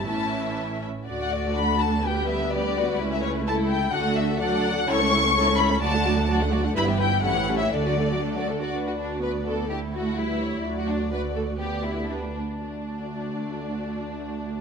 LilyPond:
<<
  \new Staff \with { instrumentName = "Violin section" } { \time 2/4 \key d \major \tempo 4 = 125 a''4 r4 | r16 fis''16 d''8 b''8 a''8 | g''8 e''8 d''4 | r16 e''16 cis''8 a''8 g''8 |
fis''8 e''8 fis''4 | cis'''4. b''8 | a''4 r4 | b''8 g''8 \tuplet 3/2 { fis''4 e''8 } |
d''4. r8 | b'4 d''4 | a'4 b'8 cis''8 | d''2 |
d''4 b'8 r8 | d''2~ | d''2 | }
  \new Staff \with { instrumentName = "Violin section" } { \time 2/4 \key d \major << { e''4. r8 | d''4 a'4 | b'4 b'4~ | b'4 a'4 |
a'4 d''4 | a'16 cis''16 a'16 cis''16 a'16 cis''16 a'16 cis''16 | d''16 fis''16 d''16 fis''16 d''16 fis''16 d''16 fis''16 | b'16 e''16 b'16 e''16 a'16 cis''16 a'16 cis''16 |
a'16 d''16 a'16 d''16 a'16 d''16 a'16 d''16 | r16 fis'16 d'8 b'8 a'8 | g'8 fis'8 e'4 | r16 fis'16 d'8 b'8 a'8 |
g'8 e'8 d'4 | d'2~ | d'2 | } \\ { e'4. r8 | fis'2 | g'4 g'8 fis'8 | e'4 e'4 |
fis'4 a'4 | cis''16 a'16 cis''16 a'16 cis''16 a'16 cis''16 a'16 | fis'16 a'16 fis'16 a'16 fis'16 a'16 fis'16 a'16 | e'16 g'16 e'16 g'16 e'16 g'16 e'16 g'16 |
a'16 fis'16 a'16 fis'16 a'16 fis'16 a'16 fis'16 | r2 | r2 | r2 |
r2 | r2 | r2 | } >> }
  \new Staff \with { instrumentName = "Viola section" } { \time 2/4 \key d \major << { cis'4. r8 | fis'4 d'4 | b2 | cis'4 e'4 |
d'4 d'4 | e'16 cis'16 e'16 cis'16 e'16 cis'16 e'16 cis'16 | fis'16 d'16 fis'16 d'16 fis'16 d'16 fis'16 d'16 | e'16 b16 e'16 b16 cis'16 e'16 cis'16 e'16 |
d'16 a16 d'16 a16 d'16 a16 d'16 a16 | fis'2 | e'2 | fis'4 fis'4 |
g'4 g'8 r8 | fis'2~ | fis'2 | } \\ { e4. r8 | a2 | g4 g4 | a2 |
a4 fis4 | cis'16 a16 cis'16 a16 cis'16 a16 cis'16 a16 | fis16 a16 fis16 a16 fis16 a16 fis16 a16 | g16 e16 g16 e16 g16 e16 g16 e16 |
a16 fis16 a16 fis16 a16 fis16 a16 fis16 | d'4 b4 | a4 g4 | fis4 a4 |
b4 b8 r8 | a2~ | a2 | } >> }
  \new Staff \with { instrumentName = "Cello section" } { \clef bass \time 2/4 \key d \major a,4. r8 | d,2~ | d,2 | cis,2 |
d,2 | cis,2 | d,2 | g,4 a,4 |
d4. r8 | d,2~ | d,2 | d,2~ |
d,4. r8 | d,2~ | d,2 | }
  \new Staff \with { instrumentName = "Double bass section" } { \clef bass \time 2/4 \key d \major a,,4. r8 | d,2~ | d,2 | cis,2 |
d,2 | cis,2 | d,2 | g,,4 a,,4 |
d,4. r8 | d,2~ | d,2 | d,2~ |
d,4. r8 | d,2~ | d,2 | }
>>